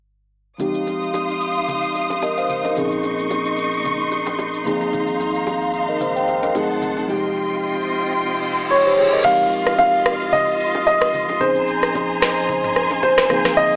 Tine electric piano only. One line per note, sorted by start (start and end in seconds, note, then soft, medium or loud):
0.59 2.72 F3 medium
0.59 2.72 G#3 medium
0.59 2.72 C4 medium
0.59 2.73 D#4 medium
0.59 2.73 G4 medium
2.22 2.37 A#4 medium
2.22 2.36 D#5 medium
2.37 2.63 C5 medium
2.37 2.63 F5 medium
2.64 2.90 A#4 medium
2.64 2.90 D#5 medium
2.75 4.61 A#2 medium
2.75 4.61 F3 medium
2.75 4.62 C4 medium
2.75 4.62 C#4 medium
2.75 4.62 D#4 medium
2.75 4.62 G#4 medium
4.65 6.50 F3 medium
4.65 6.51 A#3 medium
4.65 6.51 C4 medium
4.65 6.51 D#4 medium
4.65 6.52 G#4 medium
5.89 6.00 A#4 medium
5.89 6.00 D#5 medium
6.01 6.15 C5 medium
6.01 6.15 F5 medium
6.16 6.27 C5 medium
6.16 6.27 G5 medium
6.28 6.42 C5 medium
6.28 6.42 F5 medium
6.43 6.69 A#4 medium
6.43 6.68 D#5 medium
6.54 7.09 F#3 medium
6.54 7.09 A3 medium
6.54 7.09 C4 medium
6.54 7.08 D#4 medium
6.54 7.09 G#4 medium
7.08 9.20 C#2 medium
7.08 9.21 C3 medium
7.08 9.21 F3 medium
7.08 9.21 G#3 medium
7.08 9.21 D#4 medium
7.08 8.42 G4 medium
8.86 8.98 G4 medium
8.86 8.97 C5 medium
8.98 9.12 G#4 medium
8.98 9.12 C#5 medium
9.13 9.39 A#4 medium
9.13 9.39 D#5 medium
9.24 11.37 F3 medium
9.24 11.37 G#3 medium
9.24 11.37 C4 medium
9.24 11.38 D#4 medium
9.24 11.38 G4 medium
11.40 13.26 F3 medium
11.40 13.26 C4 medium
11.40 13.27 C#4 medium
11.40 13.27 D#4 medium
11.40 13.27 G#4 medium
13.29 13.76 F3 medium
13.29 13.76 A#3 medium
13.29 13.76 C4 medium
13.29 13.76 D#4 medium
13.29 13.76 G#4 medium